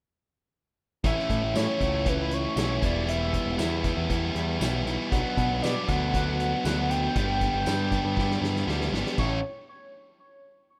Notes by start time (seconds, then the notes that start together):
1.04 A1 A2 E3 A3 C#4 E4 E5, kick, closed hi-hat
1.19 snare
1.30 A2, kick, closed hi-hat
1.44 A1
1.54 A2 E3 A3 C#4 E4 C#5, snare, closed hi-hat, tambourine
1.81 C#2 A3 C#4 E4, kick, closed hi-hat
2.06 E3 A3 C#4 E4 B4, kick, closed hi-hat
2.31 C#5, closed hi-hat
2.56 B1 E3 A3 C#4 E4, snare, closed hi-hat, tambourine
2.82 E1 E3 G3 B3 E4 D5, kick, closed hi-hat
3.07 E3 G3 B3 E4 E5, closed hi-hat
3.33 kick, closed hi-hat
3.46 E1
3.58 E2 E3 G3 B3 E4, snare, closed hi-hat, tambourine
3.84 G3 B3 E4, kick, closed hi-hat
3.97 E2
4.08 E3 G3 B3 E4, kick, closed hi-hat
4.35 E2, closed hi-hat
4.60 B1 E3 G3 B3 E4, snare, closed hi-hat, tambourine
4.85 B1 G3 B3 E4, closed hi-hat
5.12 B1 B2 F#3 B3 D4 F#5, kick, closed hi-hat
5.37 B2, kick, closed hi-hat
5.51 B1
5.62 B2 F#3 B3 D4 D5, snare, closed hi-hat, tambourine
5.88 D2 F#3 B3 D4 F#5, kick, closed hi-hat
6.14 B2 F#3 B3 D4, kick, closed hi-hat
6.40 closed hi-hat
6.64 D2 B2 F#3 B3 D4 F#5, snare, closed hi-hat, tambourine
6.90 F#3 B3 D4 G5, closed hi-hat
7.16 G1 G2 D3 G3 B3 D4, kick, closed hi-hat
7.41 kick, closed hi-hat
7.54 G1
7.66 G2 D3 G3 B3 D4, snare, closed hi-hat, tambourine
7.92 G3 B3 D4, kick, closed hi-hat
8.05 G2
8.17 D3 G3 B3 D4, kick, snare
8.31 snare
8.42 G2, snare
8.56 snare
8.67 D2 D3 G3 B3 D4, snare
8.81 snare
8.92 G#1 G3 B3 D4, snare
9.06 snare
9.18 A1 A2 E3 A3 C#4 E4 A4 C#5, kick, crash